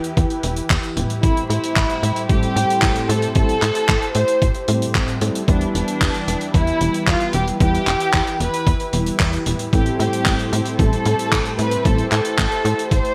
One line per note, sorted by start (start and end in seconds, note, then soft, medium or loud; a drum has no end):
0.00 1.19 E3 medium
0.00 5.44 E4 medium
0.00 0.70 G4 loud
0.00 9.69 G4 medium
0.00 1.19 B4 medium
0.00 closed hi-hat medium
0.17 0.26 E2 medium
0.17 kick loud
0.17 closed hi-hat medium
0.30 closed hi-hat soft
0.43 0.62 E1 loud
0.43 closed hi-hat medium
0.56 closed hi-hat medium
0.70 0.79 E2 medium
0.70 kick loud
0.70 clap loud
0.70 closed hi-hat medium
0.83 closed hi-hat soft
0.97 1.06 E1 loud
0.97 1.20 A2 medium
0.97 1.20 G3 medium
0.97 1.20 B3 medium
0.97 1.20 E4 medium
0.97 1.20 B4 loud
0.97 closed hi-hat loud
1.10 closed hi-hat medium
1.23 1.42 A1 loud
1.23 2.26 A2 medium
1.23 2.26 G3 medium
1.23 5.44 A3 medium
1.23 2.26 C4 medium
1.23 1.48 E4 medium
1.23 2.26 E4 medium
1.23 2.26 A4 medium
1.23 5.44 C5 medium
1.23 kick loud
1.23 closed hi-hat medium
1.37 closed hi-hat soft
1.50 1.59 A2 medium
1.50 2.25 E4 medium
1.50 closed hi-hat medium
1.64 closed hi-hat medium
1.76 1.86 A1 medium
1.76 kick loud
1.76 clap loud
1.76 closed hi-hat medium
1.90 closed hi-hat soft
2.03 2.12 A2 loud
2.03 closed hi-hat loud
2.16 closed hi-hat medium
2.29 2.48 A1 medium
2.29 3.32 A2 medium
2.29 3.32 G3 medium
2.29 3.32 C4 medium
2.29 3.32 E4 medium
2.29 3.09 G4 loud
2.29 3.32 A4 loud
2.29 kick loud
2.29 closed hi-hat medium
2.43 closed hi-hat soft
2.56 2.65 A2 loud
2.56 closed hi-hat loud
2.70 closed hi-hat medium
2.82 2.92 A1 loud
2.82 kick loud
2.82 clap loud
2.82 closed hi-hat medium
2.96 closed hi-hat soft
3.09 3.28 A2 loud
3.09 3.34 A4 medium
3.09 closed hi-hat loud
3.22 closed hi-hat medium
3.35 3.54 A1 loud
3.35 3.57 A2 medium
3.35 3.57 G3 medium
3.35 3.57 C4 medium
3.35 3.57 E4 medium
3.35 4.11 A4 loud
3.35 3.57 A4 loud
3.35 kick loud
3.35 closed hi-hat medium
3.49 closed hi-hat soft
3.62 3.71 A2 medium
3.62 clap medium
3.62 closed hi-hat medium
3.75 closed hi-hat medium
3.89 3.98 A1 medium
3.89 kick loud
3.89 clap loud
3.89 closed hi-hat medium
4.02 closed hi-hat soft
4.15 4.24 A2 loud
4.15 4.68 C5 loud
4.15 closed hi-hat loud
4.28 closed hi-hat medium
4.42 4.51 A1 medium
4.42 kick loud
4.42 closed hi-hat medium
4.54 closed hi-hat soft
4.68 5.18 A2 medium
4.68 4.87 A2 loud
4.68 5.18 G3 medium
4.68 5.18 C4 medium
4.68 5.18 E4 medium
4.68 5.18 A4 medium
4.68 closed hi-hat loud
4.82 closed hi-hat medium
4.95 5.04 A1 medium
4.95 kick loud
4.95 clap loud
4.95 closed hi-hat medium
5.08 closed hi-hat soft
5.21 5.31 A2 loud
5.21 5.42 G3 medium
5.21 5.42 C4 medium
5.21 5.42 E4 medium
5.21 5.42 A4 medium
5.21 closed hi-hat loud
5.35 closed hi-hat medium
5.48 5.67 E2 loud
5.48 9.69 E3 medium
5.48 6.51 G3 medium
5.48 6.51 B3 medium
5.48 5.73 D4 medium
5.48 13.14 E4 medium
5.48 6.51 E4 medium
5.48 9.69 B4 medium
5.48 6.51 B4 medium
5.48 kick loud
5.48 closed hi-hat medium
5.61 closed hi-hat soft
5.75 5.84 E1 medium
5.75 6.50 D4 medium
5.75 closed hi-hat medium
5.88 closed hi-hat medium
6.01 6.10 E2 medium
6.01 kick loud
6.01 clap loud
6.01 closed hi-hat medium
6.14 closed hi-hat soft
6.28 6.37 E1 loud
6.28 closed hi-hat loud
6.41 closed hi-hat medium
6.54 6.73 E2 medium
6.54 7.57 G3 medium
6.54 7.57 B3 medium
6.54 7.57 E4 medium
6.54 7.04 E4 loud
6.54 7.57 B4 loud
6.54 kick loud
6.54 closed hi-hat medium
6.67 closed hi-hat soft
6.81 6.90 E1 medium
6.81 closed hi-hat medium
6.94 closed hi-hat medium
7.07 7.17 E2 loud
7.07 7.34 F4 loud
7.07 kick loud
7.07 clap loud
7.07 closed hi-hat medium
7.20 closed hi-hat soft
7.33 7.52 E1 loud
7.33 7.46 G4 medium
7.33 closed hi-hat loud
7.48 closed hi-hat medium
7.60 7.79 E2 loud
7.60 7.81 G3 medium
7.60 7.81 B3 medium
7.60 7.81 E4 medium
7.60 8.36 G4 loud
7.60 7.81 B4 loud
7.60 kick loud
7.60 closed hi-hat medium
7.75 closed hi-hat soft
7.87 7.96 E1 medium
7.87 clap medium
7.87 closed hi-hat medium
8.00 closed hi-hat medium
8.14 8.23 E2 medium
8.14 kick loud
8.14 clap loud
8.14 closed hi-hat medium
8.27 closed hi-hat soft
8.40 8.49 E1 loud
8.40 8.93 B4 loud
8.40 closed hi-hat loud
8.54 closed hi-hat medium
8.67 8.76 E2 medium
8.67 kick loud
8.67 closed hi-hat medium
8.80 closed hi-hat soft
8.93 9.12 E1 medium
8.93 9.43 G3 medium
8.93 9.43 B3 medium
8.93 9.43 E4 medium
8.93 9.43 B4 loud
8.93 closed hi-hat loud
9.06 closed hi-hat medium
9.20 9.38 E2 medium
9.20 kick loud
9.20 clap loud
9.20 closed hi-hat medium
9.33 closed hi-hat soft
9.46 9.56 E1 medium
9.46 9.67 A2 medium
9.46 9.67 G3 medium
9.46 9.67 B3 medium
9.46 9.67 E4 medium
9.46 9.67 B4 medium
9.46 closed hi-hat loud
9.59 closed hi-hat medium
9.73 9.91 A1 loud
9.73 10.76 A2 medium
9.73 10.76 G3 medium
9.73 13.14 A3 medium
9.73 10.76 C4 medium
9.73 10.76 E4 medium
9.73 13.14 G4 medium
9.73 9.98 G4 medium
9.73 10.76 A4 medium
9.73 13.14 C5 medium
9.73 kick loud
9.73 closed hi-hat medium
9.86 closed hi-hat soft
9.99 10.09 A2 medium
9.99 10.75 G4 medium
9.99 closed hi-hat medium
10.13 closed hi-hat medium
10.26 10.35 A1 medium
10.26 kick loud
10.26 clap loud
10.26 closed hi-hat medium
10.39 closed hi-hat soft
10.53 10.62 A2 loud
10.53 closed hi-hat loud
10.66 closed hi-hat medium
10.79 10.98 A1 medium
10.79 11.82 A2 medium
10.79 11.82 G3 medium
10.79 11.82 C4 medium
10.79 11.82 E4 medium
10.79 11.82 A4 loud
10.79 11.55 A4 loud
10.79 kick loud
10.79 closed hi-hat medium
10.93 closed hi-hat soft
11.05 11.15 A2 medium
11.05 closed hi-hat medium
11.19 closed hi-hat medium
11.32 11.41 A1 loud
11.32 kick loud
11.32 clap loud
11.32 closed hi-hat medium
11.45 closed hi-hat soft
11.59 11.77 A2 loud
11.59 11.83 B4 loud
11.59 closed hi-hat medium
11.71 closed hi-hat medium
11.85 12.04 A1 loud
11.85 12.06 A2 medium
11.85 12.06 G3 medium
11.85 12.06 C4 medium
11.85 12.06 E4 medium
11.85 12.06 A4 loud
11.85 12.11 A4 loud
11.85 kick loud
11.85 closed hi-hat medium
11.98 closed hi-hat soft
12.12 12.21 A2 loud
12.12 12.88 A4 loud
12.12 clap soft
12.12 closed hi-hat medium
12.25 closed hi-hat medium
12.38 12.48 A1 medium
12.38 kick loud
12.38 clap loud
12.38 closed hi-hat medium
12.52 closed hi-hat soft
12.65 12.74 A2 loud
12.65 closed hi-hat loud
12.79 closed hi-hat medium
12.91 13.01 A1 medium
12.91 13.14 C5 loud
12.91 kick loud
12.91 closed hi-hat medium
13.05 closed hi-hat soft